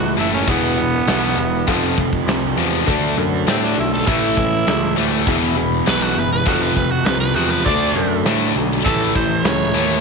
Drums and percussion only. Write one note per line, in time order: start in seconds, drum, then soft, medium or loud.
0.48 kick loud
0.48 open hi-hat medium
1.08 snare loud
1.08 open hi-hat soft
1.68 kick medium
1.68 open hi-hat soft
1.98 kick medium
2.13 kick medium
2.28 snare loud
2.28 open hi-hat medium
2.88 kick loud
2.88 open hi-hat medium
3.48 snare loud
3.48 open hi-hat soft
4.07 kick loud
4.07 open hi-hat medium
4.37 kick medium
4.67 snare loud
4.67 open hi-hat medium
5.27 kick loud
5.27 open hi-hat medium
5.87 snare medium
5.87 open hi-hat medium
6.46 kick loud
6.46 open hi-hat medium
6.76 kick medium
7.06 snare loud
7.06 open hi-hat medium
7.66 kick loud
7.66 open hi-hat medium
8.25 snare loud
8.25 open hi-hat medium
8.86 kick loud
8.86 open hi-hat medium
9.16 kick medium
9.45 snare loud
9.45 open hi-hat medium
9.76 snare soft